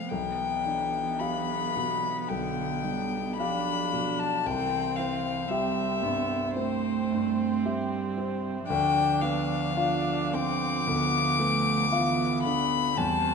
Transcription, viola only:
0.12 B3
3.39 D4
4.47 C4
5.51 C4
6.56 C4
8.70 D4
9.77 D4
10.33 C4
10.87 B3
11.39 A3
11.93 B3
12.97 C4

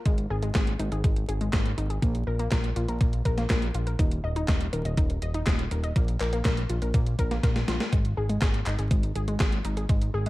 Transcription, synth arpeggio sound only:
0.06 G#3
0.30 G#4
0.43 G#3
0.55 G#4
0.79 D#4
0.92 G#4
1.04 G#3
1.29 G#4
1.41 G#3
1.53 G#4
1.78 D#4
1.90 G#4
2.02 A#3
2.27 A#4
2.39 A#3
2.52 A#4
2.76 F4
2.89 A#4
3.01 A#3
3.25 A#4
3.38 A#3
3.50 A#4
3.75 F4
3.87 A#4
3.99 D#4
4.24 D#5
4.36 D#4
4.48 D#5
4.73 A#4
4.85 D#5
4.97 D#4
5.22 D#5
5.34 D#4
5.47 D#5
5.71 A#4
5.84 D#5
5.96 A#3
6.20 A#4
6.33 A#3
6.45 A#4
6.70 F4
6.82 A#4
6.94 A#3
7.19 A#4
7.31 A#3
7.43 A#4
7.68 F4
7.80 A#4
7.93 G#3
8.17 G#4
8.29 G#3
8.42 G#4
8.66 D#4
8.79 G#4
8.91 G#3
9.16 G#4
9.28 G#3
9.40 G#4
9.65 D#4
9.77 G#4
9.89 G#3
10.14 G#4
10.26 G#3

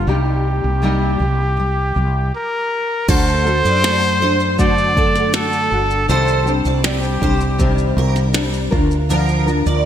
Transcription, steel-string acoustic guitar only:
3.09 A4
3.65 D5
4.22 C5
4.97 A4
6.09 C5
6.67 D5
7.23 C5
7.98 A#4
9.10 A#4
9.67 D5

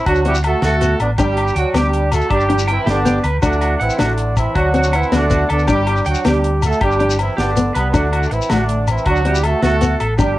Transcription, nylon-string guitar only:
0.25 C4
0.81 B3
1.19 D4
1.75 B3
2.50 D4
2.87 muted nylon-string guitar stroke
3.05 B3
3.43 D4
3.98 D4
4.74 C4
5.12 B3
5.30 B3
5.69 D4
6.25 B3
7.00 D4
7.57 B3
7.94 D4
8.50 A3
9.25 C4
9.63 B3
9.82 B3
10.18 D4

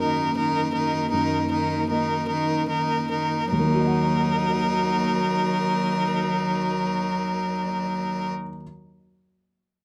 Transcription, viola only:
0.01 D#4
0.36 D#4
0.73 D#4
1.10 D#4
1.51 D#4
1.90 D#4
2.29 D#4
2.70 D#4
3.10 D#4
3.52 D#4

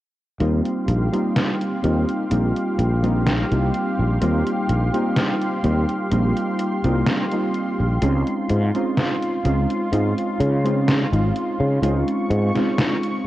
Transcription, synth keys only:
0.40 G3 A#3 C4 D#4 F4
1.12 G3 A#3 C4 D#4 F4
1.82 G3 A#3 C4 D#4 F4
2.30 G3 A#3 C4 D#4 F4
3.02 G3 A#3 C4 D#4 F4
3.50 G3 A#3 C4 D#4 F4
4.20 G3 A#3 C4 D#4 F4
4.93 G3 A#3 C4 D#4 F4
5.63 G3 A#3 C4 D#4 F4
6.11 G3 A#3 C4 D#4 F4
6.84 G3 A#3 C4 D#4 F4
7.31 G3 A#3 C4 D#4 F4
8.01 G#3 C4 C#4 D#4 F4
8.74 G#3 C4 C#4 D#4 F4
9.44 G#3 C4 C#4 D#4 F4
9.92 G#3 C4 C#4 D#4 F4
10.64 G#3 C4 C#4 D#4 F4
11.12 G#3 C4 C#4 D#4 F4
11.82 G#3 C4 C#4 D#4 F4
12.54 G#3 C4 C#4 D#4 F4

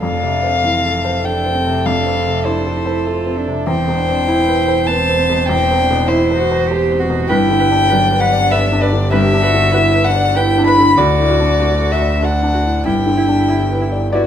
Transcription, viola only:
0.02 A4
3.66 C5
7.29 B4
7.59 B4
7.89 B4
8.21 B4
8.51 B4
8.81 B4
9.11 B4
9.42 B4
9.72 B4
10.04 B4
10.35 B4
10.67 B4
10.98 F#4
11.29 F#4
11.61 F#4
11.91 F#4
12.22 F#4
12.53 F#4
12.85 E4
13.17 E4
13.48 E4
13.81 E4
14.13 E4

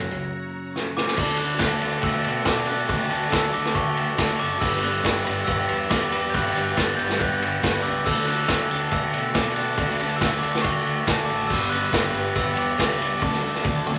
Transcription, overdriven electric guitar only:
Already playing: F#2 C#3 F#3 A#3 C#4 F#4
1.18 D3 D4 F#4 A4
1.39 D4 F#4 A4
1.61 D3 D4 F#4 A4
1.83 D4 F#4 A4
2.46 D3 D4 F#4 A4
2.69 D4 F#4 A4
2.89 D3 D4 F#4 A4
3.09 D4 F#4 A4
3.30 D3 D4 F#4 A4
3.52 D4 F#4 A4
4.18 D3 D4 F#4 A4
4.40 D4 F#4 A4
4.60 G3 B3 D4 B4
4.82 B3 D4 B4
5.03 G3 B3 D4 B4
5.25 B3 D4 B4
5.90 G3 B3 D4 B4
6.13 B3 D4 B4
6.34 G3 B3 D4 B4
6.55 B3 D4 B4
6.77 G3 B3 D4 B4
7.00 B3 D4 B4
7.63 G3 B3 D4 B4
7.85 B3 D4 B4
8.05 D3 D4 F#4 A4
8.27 D4 F#4 A4
8.48 D3 D4 F#4 A4
8.70 D4 F#4 A4
9.35 D3 D4 F#4 A4
9.56 D4 F#4 A4
9.78 D3 D4 F#4 A4
10.00 D4 F#4 A4
10.22 D3 D4 F#4 A4
10.43 D4 F#4 A4
11.07 D3 D4 F#4 A4
11.28 D4 F#4 A4
11.49 G3 B3 D4 B4
11.71 B3 D4 B4
11.91 G3 B3 D4 B4
12.14 B3 D4 B4
12.78 G3 B3 D4 B4
12.99 B3 D4 B4
13.20 D3 D4 F#4 A4
13.42 D4 F#4 A4
13.64 D3 D4 F#4 A4
13.87 D4 F#4 A4

